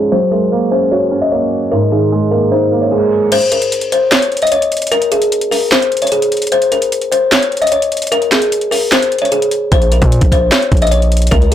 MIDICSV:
0, 0, Header, 1, 5, 480
1, 0, Start_track
1, 0, Tempo, 400000
1, 142, Time_signature, 4, 2, 24, 8
1, 13855, End_track
2, 0, Start_track
2, 0, Title_t, "Kalimba"
2, 0, Program_c, 0, 108
2, 144, Note_on_c, 0, 72, 90
2, 332, Note_off_c, 0, 72, 0
2, 382, Note_on_c, 0, 70, 74
2, 571, Note_off_c, 0, 70, 0
2, 859, Note_on_c, 0, 72, 77
2, 1049, Note_off_c, 0, 72, 0
2, 1100, Note_on_c, 0, 73, 88
2, 1439, Note_off_c, 0, 73, 0
2, 1459, Note_on_c, 0, 75, 71
2, 1554, Note_off_c, 0, 75, 0
2, 1582, Note_on_c, 0, 73, 80
2, 2033, Note_off_c, 0, 73, 0
2, 2059, Note_on_c, 0, 70, 102
2, 2249, Note_off_c, 0, 70, 0
2, 2302, Note_on_c, 0, 68, 78
2, 2490, Note_off_c, 0, 68, 0
2, 2776, Note_on_c, 0, 70, 82
2, 2967, Note_off_c, 0, 70, 0
2, 3021, Note_on_c, 0, 72, 88
2, 3360, Note_off_c, 0, 72, 0
2, 3381, Note_on_c, 0, 73, 77
2, 3476, Note_off_c, 0, 73, 0
2, 3502, Note_on_c, 0, 68, 75
2, 3953, Note_off_c, 0, 68, 0
2, 3986, Note_on_c, 0, 72, 103
2, 4173, Note_off_c, 0, 72, 0
2, 4224, Note_on_c, 0, 70, 77
2, 4412, Note_off_c, 0, 70, 0
2, 4706, Note_on_c, 0, 72, 79
2, 4893, Note_off_c, 0, 72, 0
2, 4942, Note_on_c, 0, 73, 87
2, 5280, Note_off_c, 0, 73, 0
2, 5310, Note_on_c, 0, 75, 79
2, 5401, Note_off_c, 0, 75, 0
2, 5422, Note_on_c, 0, 73, 80
2, 5873, Note_off_c, 0, 73, 0
2, 5899, Note_on_c, 0, 70, 107
2, 6089, Note_off_c, 0, 70, 0
2, 6139, Note_on_c, 0, 68, 76
2, 6329, Note_off_c, 0, 68, 0
2, 6618, Note_on_c, 0, 70, 82
2, 6808, Note_off_c, 0, 70, 0
2, 6865, Note_on_c, 0, 72, 90
2, 7202, Note_off_c, 0, 72, 0
2, 7226, Note_on_c, 0, 73, 79
2, 7319, Note_off_c, 0, 73, 0
2, 7343, Note_on_c, 0, 68, 77
2, 7794, Note_off_c, 0, 68, 0
2, 7824, Note_on_c, 0, 72, 90
2, 8012, Note_off_c, 0, 72, 0
2, 8062, Note_on_c, 0, 70, 76
2, 8251, Note_off_c, 0, 70, 0
2, 8539, Note_on_c, 0, 72, 78
2, 8729, Note_off_c, 0, 72, 0
2, 8781, Note_on_c, 0, 73, 94
2, 9120, Note_off_c, 0, 73, 0
2, 9139, Note_on_c, 0, 75, 75
2, 9234, Note_off_c, 0, 75, 0
2, 9262, Note_on_c, 0, 73, 83
2, 9713, Note_off_c, 0, 73, 0
2, 9741, Note_on_c, 0, 70, 103
2, 9930, Note_off_c, 0, 70, 0
2, 9983, Note_on_c, 0, 68, 78
2, 10171, Note_off_c, 0, 68, 0
2, 10456, Note_on_c, 0, 70, 83
2, 10647, Note_off_c, 0, 70, 0
2, 10703, Note_on_c, 0, 72, 86
2, 11041, Note_off_c, 0, 72, 0
2, 11061, Note_on_c, 0, 73, 80
2, 11155, Note_off_c, 0, 73, 0
2, 11183, Note_on_c, 0, 68, 80
2, 11634, Note_off_c, 0, 68, 0
2, 11667, Note_on_c, 0, 72, 98
2, 11853, Note_off_c, 0, 72, 0
2, 11904, Note_on_c, 0, 70, 73
2, 12092, Note_off_c, 0, 70, 0
2, 12385, Note_on_c, 0, 72, 80
2, 12572, Note_off_c, 0, 72, 0
2, 12618, Note_on_c, 0, 73, 90
2, 12958, Note_off_c, 0, 73, 0
2, 12986, Note_on_c, 0, 75, 77
2, 13078, Note_off_c, 0, 75, 0
2, 13097, Note_on_c, 0, 73, 82
2, 13550, Note_off_c, 0, 73, 0
2, 13575, Note_on_c, 0, 70, 107
2, 13767, Note_off_c, 0, 70, 0
2, 13818, Note_on_c, 0, 68, 74
2, 13855, Note_off_c, 0, 68, 0
2, 13855, End_track
3, 0, Start_track
3, 0, Title_t, "Felt piano"
3, 0, Program_c, 1, 0
3, 0, Control_c, 1, 64, 127
3, 0, Note_on_c, 1, 51, 80
3, 0, Note_on_c, 1, 53, 81
3, 0, Note_on_c, 1, 56, 87
3, 0, Note_on_c, 1, 61, 85
3, 0, Note_on_c, 1, 63, 90
3, 141, Note_off_c, 1, 61, 0
3, 144, Note_off_c, 1, 56, 0
3, 144, Note_off_c, 1, 63, 0
3, 146, Note_on_c, 1, 54, 84
3, 158, Control_c, 1, 64, 0
3, 162, Note_off_c, 1, 51, 0
3, 163, Note_off_c, 1, 53, 0
3, 372, Note_on_c, 1, 56, 79
3, 382, Control_c, 1, 64, 127
3, 622, Note_on_c, 1, 58, 93
3, 853, Note_on_c, 1, 61, 81
3, 1099, Note_on_c, 1, 66, 90
3, 1314, Note_off_c, 1, 61, 0
3, 1332, Note_on_c, 1, 61, 85
3, 1344, Note_off_c, 1, 54, 0
3, 1567, Note_off_c, 1, 58, 0
3, 1577, Note_off_c, 1, 56, 0
3, 1585, Note_on_c, 1, 58, 79
3, 2057, Note_off_c, 1, 61, 0
3, 2060, Note_off_c, 1, 66, 0
3, 2063, Note_off_c, 1, 58, 0
3, 2063, Note_on_c, 1, 44, 84
3, 2077, Control_c, 1, 64, 0
3, 2273, Control_c, 1, 64, 127
3, 2301, Note_on_c, 1, 51, 73
3, 2547, Note_on_c, 1, 56, 90
3, 2789, Note_on_c, 1, 58, 80
3, 3017, Note_on_c, 1, 63, 107
3, 3238, Note_off_c, 1, 58, 0
3, 3256, Note_on_c, 1, 58, 90
3, 3262, Note_off_c, 1, 44, 0
3, 3480, Note_off_c, 1, 56, 0
3, 3498, Note_on_c, 1, 56, 89
3, 3501, Note_off_c, 1, 51, 0
3, 3979, Note_off_c, 1, 58, 0
3, 3979, Note_off_c, 1, 63, 0
3, 3980, Note_off_c, 1, 56, 0
3, 3998, Control_c, 1, 64, 0
3, 13855, End_track
4, 0, Start_track
4, 0, Title_t, "808-style bass"
4, 0, Program_c, 2, 38
4, 11661, Note_on_c, 2, 34, 113
4, 12007, Note_off_c, 2, 34, 0
4, 12021, Note_on_c, 2, 46, 102
4, 12252, Note_off_c, 2, 46, 0
4, 12260, Note_on_c, 2, 34, 108
4, 12606, Note_off_c, 2, 34, 0
4, 12861, Note_on_c, 2, 34, 106
4, 13552, Note_off_c, 2, 34, 0
4, 13581, Note_on_c, 2, 37, 109
4, 13855, Note_off_c, 2, 37, 0
4, 13855, End_track
5, 0, Start_track
5, 0, Title_t, "Drums"
5, 3982, Note_on_c, 9, 42, 75
5, 3982, Note_on_c, 9, 49, 96
5, 4101, Note_off_c, 9, 42, 0
5, 4101, Note_on_c, 9, 42, 54
5, 4102, Note_off_c, 9, 49, 0
5, 4220, Note_off_c, 9, 42, 0
5, 4220, Note_on_c, 9, 42, 85
5, 4340, Note_off_c, 9, 42, 0
5, 4341, Note_on_c, 9, 42, 66
5, 4461, Note_off_c, 9, 42, 0
5, 4465, Note_on_c, 9, 42, 85
5, 4577, Note_off_c, 9, 42, 0
5, 4577, Note_on_c, 9, 42, 57
5, 4697, Note_off_c, 9, 42, 0
5, 4706, Note_on_c, 9, 42, 87
5, 4826, Note_off_c, 9, 42, 0
5, 4941, Note_on_c, 9, 38, 116
5, 4942, Note_on_c, 9, 42, 71
5, 4948, Note_on_c, 9, 26, 100
5, 5061, Note_off_c, 9, 38, 0
5, 5062, Note_off_c, 9, 42, 0
5, 5068, Note_off_c, 9, 26, 0
5, 5069, Note_on_c, 9, 42, 62
5, 5181, Note_off_c, 9, 42, 0
5, 5181, Note_on_c, 9, 42, 42
5, 5242, Note_off_c, 9, 42, 0
5, 5242, Note_on_c, 9, 42, 51
5, 5302, Note_off_c, 9, 42, 0
5, 5302, Note_on_c, 9, 42, 60
5, 5361, Note_off_c, 9, 42, 0
5, 5361, Note_on_c, 9, 42, 68
5, 5420, Note_off_c, 9, 42, 0
5, 5420, Note_on_c, 9, 42, 84
5, 5540, Note_off_c, 9, 42, 0
5, 5546, Note_on_c, 9, 42, 59
5, 5661, Note_off_c, 9, 42, 0
5, 5661, Note_on_c, 9, 42, 64
5, 5721, Note_off_c, 9, 42, 0
5, 5721, Note_on_c, 9, 42, 64
5, 5781, Note_off_c, 9, 42, 0
5, 5781, Note_on_c, 9, 42, 65
5, 5841, Note_off_c, 9, 42, 0
5, 5841, Note_on_c, 9, 42, 63
5, 5901, Note_off_c, 9, 42, 0
5, 5901, Note_on_c, 9, 42, 75
5, 6021, Note_off_c, 9, 42, 0
5, 6021, Note_on_c, 9, 42, 54
5, 6140, Note_off_c, 9, 42, 0
5, 6140, Note_on_c, 9, 42, 79
5, 6260, Note_off_c, 9, 42, 0
5, 6260, Note_on_c, 9, 42, 64
5, 6380, Note_off_c, 9, 42, 0
5, 6385, Note_on_c, 9, 42, 86
5, 6497, Note_off_c, 9, 42, 0
5, 6497, Note_on_c, 9, 42, 59
5, 6617, Note_off_c, 9, 42, 0
5, 6627, Note_on_c, 9, 46, 85
5, 6747, Note_off_c, 9, 46, 0
5, 6862, Note_on_c, 9, 38, 120
5, 6863, Note_on_c, 9, 42, 72
5, 6869, Note_on_c, 9, 26, 100
5, 6982, Note_off_c, 9, 38, 0
5, 6983, Note_off_c, 9, 42, 0
5, 6989, Note_off_c, 9, 26, 0
5, 6989, Note_on_c, 9, 42, 59
5, 7102, Note_off_c, 9, 42, 0
5, 7102, Note_on_c, 9, 42, 41
5, 7162, Note_off_c, 9, 42, 0
5, 7162, Note_on_c, 9, 42, 50
5, 7222, Note_off_c, 9, 42, 0
5, 7222, Note_on_c, 9, 42, 57
5, 7282, Note_off_c, 9, 42, 0
5, 7282, Note_on_c, 9, 42, 68
5, 7341, Note_off_c, 9, 42, 0
5, 7341, Note_on_c, 9, 42, 83
5, 7461, Note_off_c, 9, 42, 0
5, 7467, Note_on_c, 9, 42, 60
5, 7582, Note_off_c, 9, 42, 0
5, 7582, Note_on_c, 9, 42, 62
5, 7642, Note_off_c, 9, 42, 0
5, 7642, Note_on_c, 9, 42, 62
5, 7702, Note_off_c, 9, 42, 0
5, 7702, Note_on_c, 9, 42, 64
5, 7762, Note_off_c, 9, 42, 0
5, 7762, Note_on_c, 9, 42, 66
5, 7822, Note_off_c, 9, 42, 0
5, 7822, Note_on_c, 9, 42, 74
5, 7941, Note_off_c, 9, 42, 0
5, 7941, Note_on_c, 9, 42, 54
5, 8061, Note_off_c, 9, 42, 0
5, 8061, Note_on_c, 9, 42, 80
5, 8181, Note_off_c, 9, 42, 0
5, 8183, Note_on_c, 9, 42, 63
5, 8303, Note_off_c, 9, 42, 0
5, 8306, Note_on_c, 9, 42, 82
5, 8418, Note_off_c, 9, 42, 0
5, 8418, Note_on_c, 9, 42, 59
5, 8538, Note_off_c, 9, 42, 0
5, 8548, Note_on_c, 9, 42, 86
5, 8668, Note_off_c, 9, 42, 0
5, 8784, Note_on_c, 9, 38, 123
5, 8785, Note_on_c, 9, 42, 72
5, 8791, Note_on_c, 9, 26, 98
5, 8904, Note_off_c, 9, 38, 0
5, 8905, Note_off_c, 9, 42, 0
5, 8910, Note_on_c, 9, 42, 60
5, 8911, Note_off_c, 9, 26, 0
5, 9023, Note_off_c, 9, 42, 0
5, 9023, Note_on_c, 9, 42, 41
5, 9083, Note_off_c, 9, 42, 0
5, 9083, Note_on_c, 9, 42, 51
5, 9142, Note_off_c, 9, 42, 0
5, 9142, Note_on_c, 9, 42, 60
5, 9203, Note_off_c, 9, 42, 0
5, 9203, Note_on_c, 9, 42, 66
5, 9262, Note_off_c, 9, 42, 0
5, 9262, Note_on_c, 9, 42, 82
5, 9382, Note_off_c, 9, 42, 0
5, 9386, Note_on_c, 9, 42, 61
5, 9502, Note_off_c, 9, 42, 0
5, 9502, Note_on_c, 9, 42, 62
5, 9562, Note_off_c, 9, 42, 0
5, 9562, Note_on_c, 9, 42, 64
5, 9623, Note_off_c, 9, 42, 0
5, 9623, Note_on_c, 9, 42, 66
5, 9683, Note_off_c, 9, 42, 0
5, 9683, Note_on_c, 9, 42, 64
5, 9743, Note_off_c, 9, 42, 0
5, 9743, Note_on_c, 9, 42, 74
5, 9862, Note_off_c, 9, 42, 0
5, 9862, Note_on_c, 9, 42, 54
5, 9981, Note_off_c, 9, 42, 0
5, 9981, Note_on_c, 9, 42, 81
5, 9982, Note_on_c, 9, 38, 96
5, 9989, Note_on_c, 9, 26, 76
5, 10101, Note_off_c, 9, 42, 0
5, 10101, Note_on_c, 9, 42, 65
5, 10102, Note_off_c, 9, 38, 0
5, 10109, Note_off_c, 9, 26, 0
5, 10221, Note_off_c, 9, 42, 0
5, 10226, Note_on_c, 9, 42, 83
5, 10337, Note_off_c, 9, 42, 0
5, 10337, Note_on_c, 9, 42, 59
5, 10457, Note_off_c, 9, 42, 0
5, 10467, Note_on_c, 9, 46, 82
5, 10587, Note_off_c, 9, 46, 0
5, 10702, Note_on_c, 9, 38, 124
5, 10703, Note_on_c, 9, 42, 71
5, 10709, Note_on_c, 9, 26, 99
5, 10822, Note_off_c, 9, 38, 0
5, 10823, Note_off_c, 9, 42, 0
5, 10829, Note_off_c, 9, 26, 0
5, 10830, Note_on_c, 9, 42, 60
5, 10942, Note_off_c, 9, 42, 0
5, 10942, Note_on_c, 9, 42, 42
5, 11022, Note_off_c, 9, 42, 0
5, 11022, Note_on_c, 9, 42, 57
5, 11101, Note_off_c, 9, 42, 0
5, 11101, Note_on_c, 9, 42, 66
5, 11182, Note_off_c, 9, 42, 0
5, 11182, Note_on_c, 9, 42, 80
5, 11302, Note_off_c, 9, 42, 0
5, 11306, Note_on_c, 9, 42, 62
5, 11417, Note_off_c, 9, 42, 0
5, 11417, Note_on_c, 9, 42, 75
5, 11537, Note_off_c, 9, 42, 0
5, 11661, Note_on_c, 9, 36, 126
5, 11661, Note_on_c, 9, 42, 77
5, 11780, Note_off_c, 9, 42, 0
5, 11780, Note_on_c, 9, 42, 54
5, 11781, Note_off_c, 9, 36, 0
5, 11900, Note_off_c, 9, 42, 0
5, 11900, Note_on_c, 9, 42, 84
5, 12020, Note_off_c, 9, 42, 0
5, 12021, Note_on_c, 9, 36, 100
5, 12021, Note_on_c, 9, 42, 64
5, 12141, Note_off_c, 9, 36, 0
5, 12141, Note_off_c, 9, 42, 0
5, 12145, Note_on_c, 9, 42, 82
5, 12256, Note_off_c, 9, 42, 0
5, 12256, Note_on_c, 9, 42, 59
5, 12260, Note_on_c, 9, 36, 96
5, 12376, Note_off_c, 9, 42, 0
5, 12380, Note_off_c, 9, 36, 0
5, 12381, Note_on_c, 9, 36, 93
5, 12386, Note_on_c, 9, 42, 83
5, 12501, Note_off_c, 9, 36, 0
5, 12506, Note_off_c, 9, 42, 0
5, 12622, Note_on_c, 9, 38, 119
5, 12623, Note_on_c, 9, 42, 71
5, 12629, Note_on_c, 9, 26, 98
5, 12742, Note_off_c, 9, 38, 0
5, 12743, Note_off_c, 9, 42, 0
5, 12749, Note_off_c, 9, 26, 0
5, 12749, Note_on_c, 9, 42, 60
5, 12860, Note_on_c, 9, 36, 105
5, 12862, Note_off_c, 9, 42, 0
5, 12862, Note_on_c, 9, 42, 43
5, 12921, Note_off_c, 9, 42, 0
5, 12921, Note_on_c, 9, 42, 50
5, 12980, Note_off_c, 9, 36, 0
5, 12982, Note_off_c, 9, 42, 0
5, 12982, Note_on_c, 9, 42, 60
5, 13042, Note_off_c, 9, 42, 0
5, 13042, Note_on_c, 9, 42, 68
5, 13101, Note_off_c, 9, 42, 0
5, 13101, Note_on_c, 9, 42, 82
5, 13221, Note_off_c, 9, 42, 0
5, 13225, Note_on_c, 9, 42, 62
5, 13341, Note_off_c, 9, 42, 0
5, 13341, Note_on_c, 9, 42, 61
5, 13401, Note_off_c, 9, 42, 0
5, 13401, Note_on_c, 9, 42, 61
5, 13461, Note_off_c, 9, 42, 0
5, 13461, Note_on_c, 9, 42, 65
5, 13521, Note_off_c, 9, 42, 0
5, 13521, Note_on_c, 9, 42, 66
5, 13581, Note_off_c, 9, 42, 0
5, 13581, Note_on_c, 9, 36, 125
5, 13581, Note_on_c, 9, 42, 76
5, 13700, Note_off_c, 9, 42, 0
5, 13700, Note_on_c, 9, 42, 55
5, 13701, Note_off_c, 9, 36, 0
5, 13820, Note_off_c, 9, 42, 0
5, 13855, End_track
0, 0, End_of_file